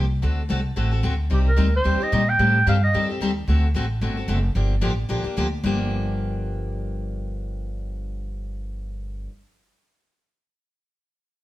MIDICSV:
0, 0, Header, 1, 5, 480
1, 0, Start_track
1, 0, Key_signature, -2, "minor"
1, 0, Tempo, 270027
1, 409, Time_signature, 4, 2, 24, 8
1, 20329, End_track
2, 0, Start_track
2, 0, Title_t, "Clarinet"
2, 0, Program_c, 0, 71
2, 2378, Note_on_c, 0, 67, 78
2, 2490, Note_off_c, 0, 67, 0
2, 2635, Note_on_c, 0, 70, 93
2, 3067, Note_off_c, 0, 70, 0
2, 3133, Note_on_c, 0, 72, 96
2, 3606, Note_on_c, 0, 75, 99
2, 3633, Note_off_c, 0, 72, 0
2, 4072, Note_on_c, 0, 79, 114
2, 4098, Note_off_c, 0, 75, 0
2, 4747, Note_off_c, 0, 79, 0
2, 4776, Note_on_c, 0, 77, 96
2, 5009, Note_off_c, 0, 77, 0
2, 5039, Note_on_c, 0, 75, 97
2, 5470, Note_off_c, 0, 75, 0
2, 20329, End_track
3, 0, Start_track
3, 0, Title_t, "Steel-string acoustic guitar"
3, 0, Program_c, 1, 25
3, 389, Note_on_c, 1, 50, 66
3, 397, Note_on_c, 1, 57, 64
3, 398, Note_on_c, 1, 60, 69
3, 412, Note_on_c, 1, 66, 70
3, 413, Note_on_c, 1, 69, 73
3, 724, Note_off_c, 1, 50, 0
3, 728, Note_off_c, 1, 57, 0
3, 729, Note_off_c, 1, 60, 0
3, 736, Note_off_c, 1, 66, 0
3, 736, Note_off_c, 1, 69, 0
3, 867, Note_on_c, 1, 50, 80
3, 881, Note_on_c, 1, 57, 87
3, 882, Note_on_c, 1, 60, 92
3, 893, Note_on_c, 1, 66, 86
3, 893, Note_on_c, 1, 69, 113
3, 1038, Note_off_c, 1, 50, 0
3, 1045, Note_off_c, 1, 57, 0
3, 1046, Note_off_c, 1, 60, 0
3, 1051, Note_off_c, 1, 66, 0
3, 1051, Note_off_c, 1, 69, 0
3, 1352, Note_on_c, 1, 50, 73
3, 1357, Note_on_c, 1, 57, 71
3, 1362, Note_on_c, 1, 60, 77
3, 1365, Note_on_c, 1, 66, 74
3, 1370, Note_on_c, 1, 69, 80
3, 1604, Note_off_c, 1, 69, 0
3, 1622, Note_off_c, 1, 50, 0
3, 1624, Note_off_c, 1, 57, 0
3, 1624, Note_off_c, 1, 66, 0
3, 1626, Note_on_c, 1, 69, 62
3, 1627, Note_off_c, 1, 60, 0
3, 1646, Note_on_c, 1, 66, 54
3, 1658, Note_on_c, 1, 60, 49
3, 1815, Note_off_c, 1, 60, 0
3, 1828, Note_off_c, 1, 66, 0
3, 1830, Note_off_c, 1, 69, 0
3, 1830, Note_on_c, 1, 57, 81
3, 1831, Note_on_c, 1, 50, 84
3, 1836, Note_on_c, 1, 60, 85
3, 1849, Note_on_c, 1, 66, 91
3, 1851, Note_on_c, 1, 69, 92
3, 2000, Note_off_c, 1, 57, 0
3, 2001, Note_off_c, 1, 50, 0
3, 2003, Note_off_c, 1, 60, 0
3, 2010, Note_off_c, 1, 66, 0
3, 2011, Note_off_c, 1, 69, 0
3, 2308, Note_on_c, 1, 48, 74
3, 2319, Note_on_c, 1, 55, 64
3, 2321, Note_on_c, 1, 60, 71
3, 2322, Note_on_c, 1, 63, 74
3, 2329, Note_on_c, 1, 67, 75
3, 2645, Note_off_c, 1, 48, 0
3, 2651, Note_off_c, 1, 55, 0
3, 2652, Note_off_c, 1, 60, 0
3, 2652, Note_off_c, 1, 63, 0
3, 2656, Note_off_c, 1, 67, 0
3, 2779, Note_on_c, 1, 48, 85
3, 2784, Note_on_c, 1, 55, 88
3, 2797, Note_on_c, 1, 60, 94
3, 2800, Note_on_c, 1, 67, 97
3, 2801, Note_on_c, 1, 63, 96
3, 2955, Note_off_c, 1, 48, 0
3, 2958, Note_off_c, 1, 55, 0
3, 2965, Note_off_c, 1, 60, 0
3, 2966, Note_off_c, 1, 63, 0
3, 2966, Note_off_c, 1, 67, 0
3, 3273, Note_on_c, 1, 48, 77
3, 3287, Note_on_c, 1, 55, 75
3, 3294, Note_on_c, 1, 60, 76
3, 3294, Note_on_c, 1, 63, 79
3, 3296, Note_on_c, 1, 67, 83
3, 3534, Note_off_c, 1, 67, 0
3, 3543, Note_off_c, 1, 48, 0
3, 3550, Note_off_c, 1, 55, 0
3, 3554, Note_off_c, 1, 60, 0
3, 3554, Note_off_c, 1, 63, 0
3, 3556, Note_on_c, 1, 67, 54
3, 3578, Note_on_c, 1, 63, 54
3, 3588, Note_on_c, 1, 60, 52
3, 3760, Note_off_c, 1, 67, 0
3, 3762, Note_off_c, 1, 60, 0
3, 3766, Note_off_c, 1, 63, 0
3, 3768, Note_on_c, 1, 48, 88
3, 3778, Note_on_c, 1, 55, 93
3, 3783, Note_on_c, 1, 60, 84
3, 3785, Note_on_c, 1, 67, 86
3, 3787, Note_on_c, 1, 63, 92
3, 3930, Note_off_c, 1, 48, 0
3, 3936, Note_off_c, 1, 55, 0
3, 3938, Note_off_c, 1, 60, 0
3, 3939, Note_off_c, 1, 67, 0
3, 3940, Note_off_c, 1, 63, 0
3, 4251, Note_on_c, 1, 51, 69
3, 4254, Note_on_c, 1, 55, 75
3, 4256, Note_on_c, 1, 60, 80
3, 4259, Note_on_c, 1, 67, 71
3, 4260, Note_on_c, 1, 69, 69
3, 4578, Note_off_c, 1, 51, 0
3, 4579, Note_off_c, 1, 55, 0
3, 4580, Note_off_c, 1, 60, 0
3, 4581, Note_off_c, 1, 67, 0
3, 4582, Note_off_c, 1, 69, 0
3, 4736, Note_on_c, 1, 51, 84
3, 4746, Note_on_c, 1, 55, 99
3, 4749, Note_on_c, 1, 60, 99
3, 4755, Note_on_c, 1, 69, 95
3, 4760, Note_on_c, 1, 67, 105
3, 4895, Note_off_c, 1, 51, 0
3, 4900, Note_off_c, 1, 55, 0
3, 4901, Note_off_c, 1, 60, 0
3, 4904, Note_off_c, 1, 69, 0
3, 4907, Note_off_c, 1, 67, 0
3, 5222, Note_on_c, 1, 51, 81
3, 5234, Note_on_c, 1, 55, 75
3, 5237, Note_on_c, 1, 60, 77
3, 5239, Note_on_c, 1, 67, 78
3, 5240, Note_on_c, 1, 69, 88
3, 5478, Note_off_c, 1, 51, 0
3, 5479, Note_off_c, 1, 69, 0
3, 5485, Note_off_c, 1, 55, 0
3, 5486, Note_off_c, 1, 60, 0
3, 5487, Note_off_c, 1, 67, 0
3, 5500, Note_on_c, 1, 69, 62
3, 5521, Note_on_c, 1, 67, 62
3, 5541, Note_on_c, 1, 60, 54
3, 5693, Note_off_c, 1, 69, 0
3, 5701, Note_off_c, 1, 60, 0
3, 5704, Note_off_c, 1, 67, 0
3, 5711, Note_on_c, 1, 51, 95
3, 5719, Note_on_c, 1, 55, 90
3, 5723, Note_on_c, 1, 60, 92
3, 5725, Note_on_c, 1, 67, 99
3, 5733, Note_on_c, 1, 69, 98
3, 5862, Note_off_c, 1, 51, 0
3, 5866, Note_off_c, 1, 55, 0
3, 5868, Note_off_c, 1, 60, 0
3, 5869, Note_off_c, 1, 67, 0
3, 5873, Note_off_c, 1, 69, 0
3, 6187, Note_on_c, 1, 50, 67
3, 6187, Note_on_c, 1, 57, 69
3, 6193, Note_on_c, 1, 60, 72
3, 6200, Note_on_c, 1, 66, 77
3, 6213, Note_on_c, 1, 69, 73
3, 6506, Note_off_c, 1, 50, 0
3, 6506, Note_off_c, 1, 57, 0
3, 6509, Note_off_c, 1, 60, 0
3, 6512, Note_off_c, 1, 66, 0
3, 6519, Note_off_c, 1, 69, 0
3, 6661, Note_on_c, 1, 50, 89
3, 6676, Note_on_c, 1, 57, 89
3, 6684, Note_on_c, 1, 60, 94
3, 6686, Note_on_c, 1, 66, 96
3, 6691, Note_on_c, 1, 69, 99
3, 6818, Note_off_c, 1, 50, 0
3, 6825, Note_off_c, 1, 57, 0
3, 6829, Note_off_c, 1, 60, 0
3, 6830, Note_off_c, 1, 66, 0
3, 6833, Note_off_c, 1, 69, 0
3, 7137, Note_on_c, 1, 50, 75
3, 7144, Note_on_c, 1, 60, 73
3, 7150, Note_on_c, 1, 57, 72
3, 7160, Note_on_c, 1, 69, 76
3, 7163, Note_on_c, 1, 66, 81
3, 7394, Note_off_c, 1, 69, 0
3, 7396, Note_off_c, 1, 50, 0
3, 7400, Note_off_c, 1, 60, 0
3, 7403, Note_off_c, 1, 57, 0
3, 7409, Note_off_c, 1, 66, 0
3, 7415, Note_on_c, 1, 69, 65
3, 7437, Note_on_c, 1, 66, 53
3, 7449, Note_on_c, 1, 60, 49
3, 7600, Note_off_c, 1, 60, 0
3, 7604, Note_off_c, 1, 66, 0
3, 7604, Note_on_c, 1, 50, 85
3, 7611, Note_off_c, 1, 69, 0
3, 7617, Note_on_c, 1, 57, 91
3, 7621, Note_on_c, 1, 60, 88
3, 7625, Note_on_c, 1, 66, 85
3, 7632, Note_on_c, 1, 69, 99
3, 7769, Note_off_c, 1, 50, 0
3, 7775, Note_off_c, 1, 57, 0
3, 7778, Note_off_c, 1, 60, 0
3, 7779, Note_off_c, 1, 66, 0
3, 7783, Note_off_c, 1, 69, 0
3, 8093, Note_on_c, 1, 50, 69
3, 8098, Note_on_c, 1, 53, 78
3, 8099, Note_on_c, 1, 58, 72
3, 8105, Note_on_c, 1, 62, 76
3, 8110, Note_on_c, 1, 67, 78
3, 8419, Note_off_c, 1, 50, 0
3, 8421, Note_off_c, 1, 53, 0
3, 8422, Note_off_c, 1, 58, 0
3, 8425, Note_off_c, 1, 62, 0
3, 8427, Note_off_c, 1, 67, 0
3, 8555, Note_on_c, 1, 50, 91
3, 8561, Note_on_c, 1, 53, 106
3, 8563, Note_on_c, 1, 58, 101
3, 8569, Note_on_c, 1, 62, 106
3, 8577, Note_on_c, 1, 67, 98
3, 8724, Note_off_c, 1, 50, 0
3, 8727, Note_off_c, 1, 53, 0
3, 8729, Note_off_c, 1, 58, 0
3, 8732, Note_off_c, 1, 62, 0
3, 8735, Note_off_c, 1, 67, 0
3, 9041, Note_on_c, 1, 50, 80
3, 9053, Note_on_c, 1, 53, 75
3, 9059, Note_on_c, 1, 58, 88
3, 9061, Note_on_c, 1, 62, 81
3, 9063, Note_on_c, 1, 67, 91
3, 9296, Note_off_c, 1, 67, 0
3, 9308, Note_off_c, 1, 50, 0
3, 9314, Note_off_c, 1, 53, 0
3, 9314, Note_off_c, 1, 62, 0
3, 9317, Note_off_c, 1, 58, 0
3, 9317, Note_on_c, 1, 67, 70
3, 9335, Note_on_c, 1, 62, 58
3, 9356, Note_on_c, 1, 58, 53
3, 9522, Note_off_c, 1, 67, 0
3, 9531, Note_off_c, 1, 62, 0
3, 9532, Note_off_c, 1, 58, 0
3, 9540, Note_on_c, 1, 50, 88
3, 9553, Note_on_c, 1, 53, 86
3, 9553, Note_on_c, 1, 58, 93
3, 9563, Note_on_c, 1, 62, 92
3, 9565, Note_on_c, 1, 67, 102
3, 9697, Note_off_c, 1, 50, 0
3, 9703, Note_off_c, 1, 53, 0
3, 9704, Note_off_c, 1, 58, 0
3, 9709, Note_off_c, 1, 62, 0
3, 9710, Note_off_c, 1, 67, 0
3, 10016, Note_on_c, 1, 43, 91
3, 10025, Note_on_c, 1, 50, 81
3, 10035, Note_on_c, 1, 53, 90
3, 10054, Note_on_c, 1, 58, 101
3, 10058, Note_on_c, 1, 62, 87
3, 10070, Note_on_c, 1, 67, 86
3, 16521, Note_off_c, 1, 43, 0
3, 16525, Note_off_c, 1, 50, 0
3, 16530, Note_off_c, 1, 53, 0
3, 16540, Note_off_c, 1, 58, 0
3, 16542, Note_off_c, 1, 62, 0
3, 16548, Note_off_c, 1, 67, 0
3, 20329, End_track
4, 0, Start_track
4, 0, Title_t, "Upright bass"
4, 0, Program_c, 2, 32
4, 0, Note_on_c, 2, 36, 93
4, 391, Note_off_c, 2, 36, 0
4, 407, Note_on_c, 2, 38, 98
4, 874, Note_off_c, 2, 38, 0
4, 891, Note_on_c, 2, 36, 94
4, 1353, Note_off_c, 2, 36, 0
4, 1363, Note_on_c, 2, 33, 89
4, 1827, Note_off_c, 2, 33, 0
4, 1838, Note_on_c, 2, 38, 93
4, 2310, Note_off_c, 2, 38, 0
4, 2318, Note_on_c, 2, 36, 91
4, 2782, Note_off_c, 2, 36, 0
4, 2793, Note_on_c, 2, 38, 92
4, 3268, Note_off_c, 2, 38, 0
4, 3289, Note_on_c, 2, 39, 92
4, 3543, Note_off_c, 2, 39, 0
4, 3775, Note_on_c, 2, 46, 97
4, 4240, Note_off_c, 2, 46, 0
4, 4251, Note_on_c, 2, 45, 101
4, 4718, Note_off_c, 2, 45, 0
4, 4739, Note_on_c, 2, 43, 92
4, 5202, Note_off_c, 2, 43, 0
4, 5697, Note_on_c, 2, 39, 90
4, 6161, Note_off_c, 2, 39, 0
4, 6177, Note_on_c, 2, 38, 97
4, 6641, Note_off_c, 2, 38, 0
4, 6653, Note_on_c, 2, 33, 85
4, 7119, Note_off_c, 2, 33, 0
4, 7134, Note_on_c, 2, 31, 91
4, 7600, Note_off_c, 2, 31, 0
4, 7607, Note_on_c, 2, 30, 102
4, 8076, Note_off_c, 2, 30, 0
4, 8087, Note_on_c, 2, 31, 90
4, 8550, Note_off_c, 2, 31, 0
4, 8561, Note_on_c, 2, 33, 92
4, 9033, Note_off_c, 2, 33, 0
4, 9049, Note_on_c, 2, 34, 95
4, 9304, Note_off_c, 2, 34, 0
4, 9545, Note_on_c, 2, 38, 97
4, 10005, Note_off_c, 2, 38, 0
4, 10017, Note_on_c, 2, 31, 104
4, 16450, Note_off_c, 2, 31, 0
4, 20329, End_track
5, 0, Start_track
5, 0, Title_t, "Muted upright bass strokes"
5, 9333, Note_on_c, 9, 29, 48
5, 9511, Note_off_c, 9, 29, 0
5, 20329, End_track
0, 0, End_of_file